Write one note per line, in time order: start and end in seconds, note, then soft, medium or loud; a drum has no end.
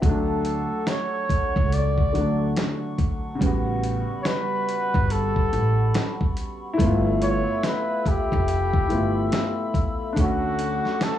0.02 0.64 D2 loud
0.02 2.09 F#3 medium
0.02 2.11 A3 medium
0.02 3.38 A4 medium
0.02 6.75 F#5 medium
0.02 6.75 C#6 medium
0.02 kick loud
0.02 closed hi-hat medium
0.06 2.13 D4 medium
0.06 0.91 A4 medium
0.45 closed hi-hat medium
0.87 1.75 C#5 medium
0.87 snare loud
0.87 closed hi-hat medium
1.29 kick loud
1.29 closed hi-hat medium
1.56 2.08 C#2 medium
1.56 kick medium
1.72 2.57 D5 loud
1.72 closed hi-hat medium
1.98 kick medium
2.12 2.52 D2 medium
2.12 3.40 D3 soft
2.12 3.41 F#3 soft
2.12 3.42 A3 soft
2.12 closed hi-hat soft
2.18 3.43 D4 soft
2.56 snare loud
2.56 closed hi-hat medium
2.98 kick loud
2.98 closed hi-hat medium
3.35 6.72 C#3 medium
3.35 6.74 G3 medium
3.41 4.02 A1 medium
3.41 6.75 G3 medium
3.41 6.76 B3 medium
3.41 6.75 B5 medium
3.41 kick loud
3.41 closed hi-hat loud
3.46 6.77 F#4 medium
3.84 closed hi-hat medium
4.23 4.28 C#5 medium
4.23 snare loud
4.23 closed hi-hat medium
4.27 5.13 B4 medium
4.69 closed hi-hat medium
4.94 5.46 G1 medium
4.94 kick loud
5.10 6.37 A4 loud
5.10 closed hi-hat medium
5.36 kick medium
5.53 5.90 A1 loud
5.53 closed hi-hat medium
5.94 snare loud
5.94 closed hi-hat medium
6.21 kick loud
6.37 closed hi-hat medium
6.74 8.85 A3 medium
6.74 8.83 E4 medium
6.79 7.40 G1 loud
6.79 8.87 B3 medium
6.79 10.14 A4 medium
6.79 10.14 E5 medium
6.79 10.14 B5 medium
6.79 10.14 E6 medium
6.79 kick loud
6.79 closed hi-hat loud
6.85 8.89 F4 medium
7.22 7.67 C#5 loud
7.22 closed hi-hat medium
7.63 8.09 B4 medium
7.63 snare loud
7.63 closed hi-hat medium
8.06 9.76 G4 loud
8.06 kick loud
8.06 closed hi-hat medium
8.32 8.84 F1 loud
8.32 kick medium
8.48 closed hi-hat medium
8.73 kick medium
8.88 9.28 G1 medium
8.88 10.15 A3 soft
8.88 10.17 B3 soft
8.88 10.16 E4 soft
8.88 closed hi-hat medium
8.93 10.18 F4 medium
9.32 snare loud
9.32 closed hi-hat medium
9.74 kick loud
9.74 closed hi-hat medium
10.13 11.19 A3 medium
10.13 11.19 D4 medium
10.13 11.19 A4 medium
10.13 11.19 F#5 medium
10.13 11.19 C#6 medium
10.13 kick loud
10.17 10.78 D2 loud
10.17 11.19 C#4 medium
10.17 11.05 F#4 medium
10.17 11.19 D6 medium
10.17 closed hi-hat medium
10.24 11.19 F#4 medium
10.59 closed hi-hat medium
10.85 snare soft
11.01 11.19 A4 loud
11.01 snare loud
11.01 closed hi-hat medium